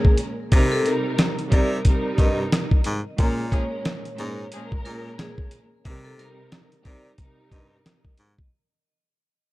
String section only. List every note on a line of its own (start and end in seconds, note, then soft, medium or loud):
0.00 0.28 A#2 loud
0.00 0.28 G#3 medium
0.00 0.28 C#4 loud
0.00 0.29 A#4 loud
0.52 0.83 C3 loud
0.52 0.84 G3 medium
0.52 0.84 D#4 medium
0.52 0.84 A#4 loud
0.84 1.33 C3 loud
0.84 1.33 G3 medium
0.84 1.34 D#4 medium
0.84 1.34 A#4 loud
1.50 1.82 C3 medium
1.50 1.82 G3 medium
1.50 1.82 D#4 medium
1.50 1.83 A#4 loud
1.87 2.79 C3 loud
1.87 2.80 G3 medium
1.87 2.80 D#4 medium
1.87 2.80 A#4 loud
3.18 3.49 A#2 loud
3.18 3.50 G#3 loud
3.18 3.50 C#4 medium
3.18 3.50 A#4 loud
3.50 3.99 A#2 loud
3.50 4.00 G#3 medium
3.50 4.00 C#4 loud
3.50 4.00 A#4 loud
4.16 4.48 A#2 loud
4.16 4.49 G#3 medium
4.16 4.49 C#4 medium
4.16 4.49 A#4 loud
4.53 5.61 A#2 loud
4.53 5.61 G#3 medium
4.53 5.62 C#4 medium
4.53 5.62 A#4 loud
5.86 6.16 C3 loud
5.86 6.17 G3 loud
5.86 6.17 D#4 medium
5.86 6.17 A#4 loud
6.17 6.66 C3 loud
6.17 6.67 G3 medium
6.17 6.67 D#4 medium
6.17 6.67 A#4 loud
6.83 7.15 C3 medium
6.83 7.15 G3 medium
6.83 7.16 D#4 medium
6.83 7.16 A#4 loud
7.20 8.12 C3 medium
7.20 8.13 G3 medium
7.20 8.13 D#4 medium
7.20 8.13 A#4 loud